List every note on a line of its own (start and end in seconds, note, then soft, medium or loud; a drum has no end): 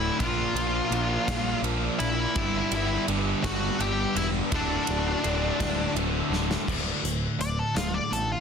0.00 0.17 D2 loud
0.00 0.18 D2 medium
0.00 0.18 A2 loud
0.00 0.18 A2 medium
0.00 0.18 D3 loud
0.00 0.19 D3 medium
0.00 0.18 A3 loud
0.00 0.18 E4 medium
0.00 0.17 F#4 medium
0.00 0.18 F#4 loud
0.00 6.62 D5 medium
0.00 0.17 E5 medium
0.00 0.17 A5 medium
0.19 0.45 A#1 loud
0.19 2.33 A#2 loud
0.19 0.54 A#2 loud
0.19 2.34 F3 loud
0.19 0.55 F3 loud
0.19 2.34 A#3 loud
0.19 0.55 A#3 loud
0.19 2.36 D4 loud
0.19 1.60 F4 medium
0.19 2.34 F4 loud
0.19 2.34 A#4 loud
0.19 1.10 F5 loud
0.19 kick loud
0.19 ride loud
0.54 0.80 A#1 loud
0.54 0.90 A#2 medium
0.54 0.91 F3 medium
0.54 0.91 A#3 medium
0.54 ride medium
0.90 1.16 A#1 medium
0.90 1.26 A#2 medium
0.90 1.27 F3 loud
0.90 1.28 A#3 loud
0.90 ride medium
1.10 1.59 E5 loud
1.27 1.53 A#1 loud
1.27 1.62 A#2 medium
1.27 1.63 F3 loud
1.27 1.63 A#3 loud
1.27 kick medium
1.27 snare loud
1.27 ride loud
1.62 1.88 A#1 medium
1.62 1.98 A#2 loud
1.62 1.99 F3 loud
1.62 1.99 A#3 loud
1.62 ride medium
1.99 2.25 A#1 medium
1.99 2.33 A#2 medium
1.99 2.34 F3 loud
1.99 2.34 A#3 medium
1.99 3.03 E4 medium
1.99 3.03 E5 loud
1.99 ride medium
2.35 2.61 G1 loud
2.35 4.49 G2 loud
2.35 2.71 G2 medium
2.35 4.49 D3 loud
2.35 2.71 D3 medium
2.35 4.49 G3 medium
2.35 2.72 G3 loud
2.35 4.50 G3 medium
2.35 4.50 B3 loud
2.35 5.87 D4 loud
2.35 4.50 G4 loud
2.35 kick loud
2.35 ride medium
2.71 2.97 G1 medium
2.71 3.06 G2 medium
2.71 3.07 D3 medium
2.71 3.08 G3 loud
2.71 ride medium
3.08 3.33 G1 medium
3.08 3.43 G2 medium
3.08 3.44 D3 medium
3.08 3.44 G3 loud
3.08 ride medium
3.43 3.69 G1 medium
3.43 3.78 G2 medium
3.43 3.79 D3 medium
3.43 3.79 G3 loud
3.43 3.77 F#4 loud
3.43 3.81 F#5 loud
3.43 kick medium
3.43 snare loud
3.43 ride loud
3.79 4.05 G1 medium
3.79 4.14 G2 medium
3.79 4.15 D3 medium
3.79 4.16 G3 loud
3.79 4.14 G4 medium
3.79 4.16 G5 loud
3.79 ride medium
4.15 4.41 E1 medium
4.15 4.49 G2 medium
4.15 4.50 D3 medium
4.15 4.50 G3 medium
4.15 4.27 E4 medium
4.15 4.27 E5 loud
4.15 ride medium
4.51 4.77 D1 loud
4.51 4.86 D2 medium
4.51 6.65 D2 loud
4.51 4.87 A2 loud
4.51 6.66 A2 loud
4.51 4.87 D3 loud
4.51 6.66 D3 loud
4.51 6.66 A3 loud
4.51 6.67 F#4 loud
4.51 kick loud
4.51 ride loud
4.55 5.93 D4 medium
4.55 5.93 D5 medium
4.87 5.13 D1 medium
4.87 5.22 D2 medium
4.87 5.22 A2 loud
4.87 5.23 D3 medium
4.87 ride medium
5.23 5.50 D1 medium
5.23 5.57 D2 medium
5.23 5.58 A2 loud
5.23 5.59 D3 medium
5.23 ride medium
5.59 5.85 D1 medium
5.59 5.93 D2 medium
5.59 5.94 A2 loud
5.59 5.94 D3 loud
5.59 kick medium
5.59 snare loud
5.59 ride loud
5.94 6.20 D1 medium
5.94 6.29 D2 medium
5.94 6.30 A2 loud
5.94 6.31 D3 medium
5.94 ride medium
6.30 6.56 D1 loud
6.30 6.65 D2 medium
6.30 6.65 A2 medium
6.30 6.66 D3 medium
6.30 snare medium
6.51 snare loud
6.67 6.90 D1 medium
6.67 7.39 D2 medium
6.67 7.01 D2 medium
6.67 7.40 A2 medium
6.67 7.02 A2 medium
6.67 7.02 D3 medium
6.67 7.05 D3 medium
6.67 7.04 A3 medium
6.67 7.03 F#4 loud
6.67 kick medium
6.67 crash loud
7.03 7.26 D1 medium
7.03 7.36 D2 medium
7.03 7.36 A2 medium
7.03 7.76 D3 medium
7.03 7.75 A3 medium
7.03 7.74 F#4 medium
7.03 closed hi-hat medium
7.39 7.62 D1 medium
7.39 7.72 D2 medium
7.39 7.72 A2 medium
7.39 7.58 D5 medium
7.39 closed hi-hat medium
7.59 7.76 A4 medium
7.74 7.98 D1 medium
7.74 8.07 D2 medium
7.74 8.40 D2 medium
7.74 8.08 A2 medium
7.74 8.11 A2 medium
7.74 8.12 D3 medium
7.74 8.13 A3 medium
7.74 7.94 F4 medium
7.74 8.14 F#4 medium
7.74 snare loud
7.74 closed hi-hat medium
7.94 8.11 D5 medium
8.11 8.34 A1 medium
8.11 8.40 D2 medium
8.11 8.40 A2 medium
8.11 8.40 D3 medium
8.11 8.40 A3 medium
8.11 8.30 A4 medium
8.11 closed hi-hat medium
8.15 8.40 F#4 medium
8.32 8.40 F4 medium